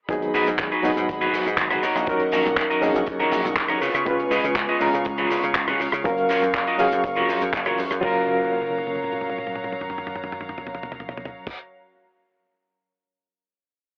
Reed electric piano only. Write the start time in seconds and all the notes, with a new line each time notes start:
0.09 F#3 B3 D#4 G#4
0.83 F#3 B3 D#4 F#4
2.07 F#3 C#4 D#4 A#4
2.81 F#3 C#4 D#4 G#4
4.05 G#3 C#4 F4 B4
4.80 G#3 C#4 F4 A#5
6.04 F#3 C#4 A#4 F5
6.78 F#3 C#4 G#4 F5
8.01 F#3 C#4 A#4 F5